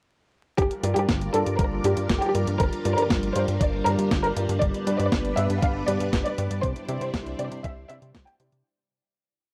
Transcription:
0.58 G1 G3 D4 F4 G4 A#4 D5, kick, closed hi-hat
0.71 closed hi-hat
0.83 G2 F4 G4 A#4 D5, closed hi-hat
0.96 G2 G4, closed hi-hat
1.09 G1, kick, snare, closed hi-hat
1.21 closed hi-hat
1.34 G2 F4 G4 A4 A#4 D5, closed hi-hat
1.46 G2, closed hi-hat
1.59 G1 A#4, kick, closed hi-hat
1.84 G2 F4 G4 A#4 D5, closed hi-hat
1.97 G2, closed hi-hat
2.09 G1, kick, snare, closed hi-hat
2.22 G4, closed hi-hat
2.35 G2 F4 G4 A#4 D5, closed hi-hat
2.47 G2, closed hi-hat
2.60 G1 A#4, kick, closed hi-hat
2.73 closed hi-hat
2.85 G2 F4 G4 A#4 D5, closed hi-hat
2.97 G2 A#4, closed hi-hat
3.10 G1, kick, snare, closed hi-hat
3.23 closed hi-hat
3.35 G2 F4 G4 A#4 C5 D5, closed hi-hat
3.48 G2, closed hi-hat
3.60 G1 D5, kick, closed hi-hat
3.86 G2 F4 G4 A#4 D5, closed hi-hat
3.99 G2, closed hi-hat
4.11 G1, kick, snare, closed hi-hat
4.24 A#4, closed hi-hat
4.36 G2 F4 G4 A#4 D5, closed hi-hat
4.49 G2, closed hi-hat
4.62 G1 B3 B4 D5, kick, closed hi-hat
4.74 closed hi-hat
4.87 G2 D4 G4 B4 D5, closed hi-hat
4.99 G2 D5, closed hi-hat
5.12 G1, kick, snare, closed hi-hat
5.25 closed hi-hat
5.37 G2 D4 G4 B4 D5 E5, closed hi-hat
5.50 G2, closed hi-hat
5.62 G1 F5, kick, closed hi-hat
5.87 G2 D4 G4 B4 D5, closed hi-hat
6.00 G2, closed hi-hat
6.13 G1, kick, snare, closed hi-hat
6.26 D5, closed hi-hat
6.38 G2 D4 G4 B4 D5, closed hi-hat
6.51 G2, closed hi-hat
6.63 C2 G3 D4 E4 C5, kick, closed hi-hat
6.76 closed hi-hat
6.88 C3 E4 G4 C5 D5, closed hi-hat
7.01 C3 C5, closed hi-hat
7.14 C2, kick, snare, closed hi-hat
7.26 closed hi-hat
7.39 C3 E4 G4 C5 D5, closed hi-hat
7.51 C3, closed hi-hat
7.64 C2 E5, kick, closed hi-hat
7.89 C3 E4 G4 C5 D5 E5, closed hi-hat
8.02 C3, closed hi-hat
8.15 C2, kick, snare, closed hi-hat
8.27 G5, closed hi-hat
8.40 C3 E4 G4 C5 D5, closed hi-hat
8.52 C3, closed hi-hat

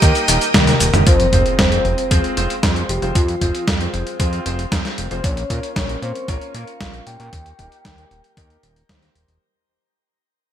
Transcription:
Already playing: G4 A#4 D#5 G5 D#6
0.02 D#2 A#3 D#4 G4 A#4, kick, closed hi-hat, cabasa
0.15 closed hi-hat, cabasa
0.28 D#1 A#3 D#4 G4 A#4, closed hi-hat, cabasa
0.41 closed hi-hat, cabasa
0.54 D#2 A#3 D#4 G4 A#4, kick, snare, closed hi-hat, high tom, cabasa
0.67 snare, closed hi-hat, high tom, cabasa
0.80 D#1, closed hi-hat, cabasa
0.94 D#1 A#3 D#4 G4 A#4, closed hi-hat, mid tom, cabasa
1.07 F2 C5, kick, closed hi-hat, impact
1.20 closed hi-hat
1.33 F1 C4 F4 G#4 C5, kick, closed hi-hat
1.46 closed hi-hat
1.59 F2 C5, kick, snare, closed hi-hat
1.72 C4 F4 G#4 C5, closed hi-hat
1.85 F1, closed hi-hat
1.98 closed hi-hat
2.11 F2 C4 F4 G#4 C5, kick, closed hi-hat
2.24 closed hi-hat
2.37 F1 C4 F4 G#4 C5, closed hi-hat
2.50 closed hi-hat
2.63 F2 C4 F4 G#4 C5, kick, snare, closed hi-hat
2.76 closed hi-hat
2.89 F1 G4, closed hi-hat
3.02 F1 C4 F4 G#4 C5, closed hi-hat
3.15 F2 F4, kick, closed hi-hat
3.28 closed hi-hat
3.41 F1 C4 F4 G#4 C5, kick, closed hi-hat
3.55 closed hi-hat
3.68 F2, kick, snare, closed hi-hat
3.81 C4 F4 G#4 C5, closed hi-hat
3.94 F1, closed hi-hat
4.07 closed hi-hat
4.20 F2 C4 F4 G#4 C5, kick, closed hi-hat
4.33 closed hi-hat
4.46 F1 C4 F4 G#4 C5, closed hi-hat
4.59 closed hi-hat
4.72 F2 C4 F4 G#4 C5, kick, snare, closed hi-hat
4.85 snare, closed hi-hat
4.98 F1, closed hi-hat
5.11 F1 C4 F4 G#4 C5, closed hi-hat
5.24 A#1 C#5, kick, closed hi-hat
5.37 closed hi-hat
5.50 A#2 A#3 C#4 F4 A#4, kick, closed hi-hat
5.63 closed hi-hat
5.76 A#1 C#5, kick, snare, closed hi-hat
5.89 A#3 C#4 F4 A#4, closed hi-hat
6.02 A#2 C5, closed hi-hat
6.15 closed hi-hat
6.28 A#1 A#3 C#4 F4 A#4 C#5, kick, closed hi-hat
6.42 closed hi-hat
6.54 A#2 A#3 C#4 F4 A#4 F5, closed hi-hat
6.68 closed hi-hat
6.81 A#1 A#3 C#4 F4 A#4, kick, snare, closed hi-hat
6.94 closed hi-hat
7.07 A#2 G5, closed hi-hat
7.20 A#2 A#3 C#4 F4 A#4, closed hi-hat
7.33 D#2, kick, closed hi-hat
7.46 closed hi-hat
7.59 D#1 A#3 D#4 G4 A#4, kick, closed hi-hat
7.72 closed hi-hat
7.85 D#2, kick, snare, closed hi-hat
7.98 A#3 D#4 G4 A#4, closed hi-hat
8.11 D#1, closed hi-hat
8.24 closed hi-hat
8.37 D#2 A#3 D#4 G4 A#4, kick, closed hi-hat
8.50 closed hi-hat
8.63 D#1, closed hi-hat
8.76 closed hi-hat
8.89 D#2 A#3 D#4 G4 C5, kick, snare, closed hi-hat
9.02 snare, closed hi-hat
9.15 D#1, closed hi-hat
9.28 D#1, closed hi-hat

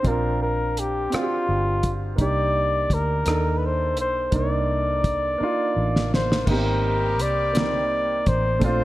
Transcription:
Already playing: C4 D4 F4 G4
0.03 A#1 C4 D4 F4, kick, closed hi-hat
0.08 A#4
0.43 A#4
0.77 G4, closed hi-hat
1.10 C4 D4 F4, muted fingered electric bass stroke, closed hi-hat
1.14 F4 F#4, cross-stick
1.21 G4
1.49 G1
1.83 kick, closed hi-hat
2.16 C2 A#3 D4 D#4, kick, closed hi-hat
2.21 G4 D5
2.90 D2 A#4, kick, closed hi-hat
3.25 D#2 A#3 D4 D#4, cross-stick, closed hi-hat
3.30 A4
3.58 B4
3.66 C5
3.97 B1 C5, closed hi-hat
4.31 C2 A#3 D4 D#4, kick, closed hi-hat
4.36 A#4 D5
5.04 kick, closed hi-hat
5.38 A#3 D4 D#4, muted fingered electric bass stroke
5.43 F4
5.76 A1
5.96 snare
6.14 C5, snare
6.32 snare
6.46 G#1 G3 A#3 B3 C4 D#4 G4, kick, crash
6.50 C4 G4 A#4
7.19 C2 D5, closed hi-hat
7.53 A#3 C4 D#4, closed hi-hat
7.57 A#4, snare
8.26 A1 C5, kick, closed hi-hat
8.59 A#1 A3 C4 D4 F4 A4, kick, closed hi-hat
8.64 F4 C5

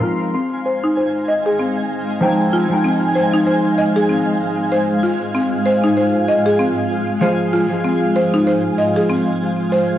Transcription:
Already playing: F3 G#3 C4 D#4 A#4
0.03 G#3 D#4 F4 C5 F5 G#5
0.35 C4
0.66 C5
0.84 D#4
0.97 C5
1.28 D#5
1.46 G#4
1.59 C4
2.21 F3 G#3 C4 D#4 C5 G5
2.53 F4
2.69 F3 G#3 D#4
2.73 G5
2.84 C4
3.15 C5
3.33 D#4
3.47 C5
3.78 D#5
3.96 G#4
4.09 C4
4.72 C5
5.03 F4
5.35 C4
5.66 C5
5.84 D#4
5.97 C5
6.28 D#5
6.46 G#4
6.59 C4
7.21 F3 G#3 F4 G#4 C5
7.53 F4 C5
7.69 F3 G#3 F4 G#4
7.84 C4
8.16 C5
8.34 D#4
8.47 C5
8.78 D#5
8.96 G#4
9.10 C4
9.72 C5

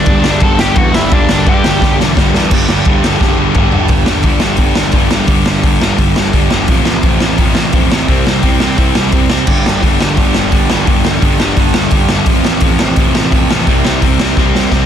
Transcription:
Already playing: D4 D5
0.06 G1 G2 D3 G3, kick, ride
0.24 G1 G2 D3 G3, snare
0.40 G1 G2 D3 G3 A4 A5, kick, ride
0.59 G1 G2 D3 G3 G4 G5, snare
0.76 E2 G2 D3 G3 F#4 F#5, kick, ride
0.94 G1 G2 D3 G3 E4 E5, snare
1.11 G1 G2 D3 G3 D4 D5, kick, ride
1.29 G1 G2 D3 G3, snare
1.46 G2 D3 G3 G4 G5, kick, ride
1.64 G1 G2 D3 G3, snare
1.82 G1 G2 D3 G3, kick, snare
2.00 E1 G2 D3 G3, snare
2.17 G1 G2 D3 G3, kick, snare
2.34 E2 G2 D3 G3, snare
2.51 G1 G2 D3 G3, kick, crash
2.69 G1 G2 D3 G3, snare
2.85 G1 G2 D3 G3, kick, ride
3.04 G1 G2 D3 G3, snare
3.21 G1 G2 D3 G3, kick, snare
3.38 G1 G2 D3 G3
3.55 G1 G2 D3 G3, kick, mid tom
3.72 G1 G2 D3 G3, floor tom
3.88 G1 G2 D3 G3, kick, open hi-hat
4.06 G1, snare
4.23 G1 G2 D3 G3, kick, open hi-hat
4.40 G1 G2 D3 G3, snare
4.57 G1 G2 D3 G3, kick, open hi-hat
4.75 G1, snare
4.92 G1 G2 D3 G3, kick, open hi-hat
5.11 G1 G2 D3 G3, snare
5.27 G1 G2 D3 G3, kick, open hi-hat
5.46 G1, snare
5.63 G1 G2 D3 G3, kick, open hi-hat
5.82 G1 G2 D3 G3, snare
5.98 G1 G2 D3 G3, kick, open hi-hat
6.16 G1, snare
6.33 G1 G2 D3 G3, kick, open hi-hat
6.51 G1 G2 D3 G3, snare
6.68 A1 F2 C3 F3, kick, open hi-hat
6.85 A1, snare
7.03 A1 F2 C3 F3, kick, open hi-hat
7.20 A1 F2 C3 F3, snare
7.38 A1 F2 C3 F3, kick, open hi-hat
7.55 A1, snare
7.73 A1 F2 C3 F3, kick, open hi-hat
7.91 A1 F2 C3 F3, snare
8.08 C2 C3 G3 C4, kick, open hi-hat
8.27 C2, snare
8.42 C2 C3 G3 C4, kick, open hi-hat
8.60 C2 C3 G3 C4, snare
8.78 C2 C3 G3 C4, kick, open hi-hat
8.95 C2, snare
9.12 C2 C3 G3 C4, kick, open hi-hat
9.30 C2 C3 G3 C4, snare
9.47 G1 G2 D3 G3, kick, crash
9.66 G1, snare
9.81 G1 G2 D3 G3, kick, open hi-hat
10.00 G1 G2 D3 G3, snare
10.17 G1 G2 D3 G3, kick, open hi-hat
10.34 G1, snare
10.51 G1 G2 D3 G3, kick, open hi-hat
10.70 G1 G2 D3 G3, snare
10.87 G1 G2 D3 G3, kick, open hi-hat
11.05 G1, snare
11.22 G1 G2 D3 G3, kick, open hi-hat
11.40 G1 G2 D3 G3, snare
11.57 G1 G2 D3 G3, kick, open hi-hat
11.74 G1, snare
11.91 G1 G2 D3 G3, kick, open hi-hat
12.09 G1 G2 D3 G3, snare
12.26 A1 F2 C3 F3, kick, open hi-hat
12.44 A1, snare
12.60 A1 F2 C3 F3, kick, open hi-hat
12.79 A1 F2 C3 F3, snare
12.96 A1 F2 C3 F3, kick, open hi-hat
13.15 A1, snare
13.32 A1 F2 C3 F3, kick, open hi-hat
13.50 A1 F2 C3 F3, snare
13.67 C2 C3 G3 C4, kick, open hi-hat
13.85 C2, snare
14.02 C2 C3 G3 C4, kick, open hi-hat
14.20 C2 C3 G3 C4, snare
14.37 C2 C3 G3 C4, kick, snare
14.55 C2, snare
14.71 C2 C3 G3 C4, kick, snare

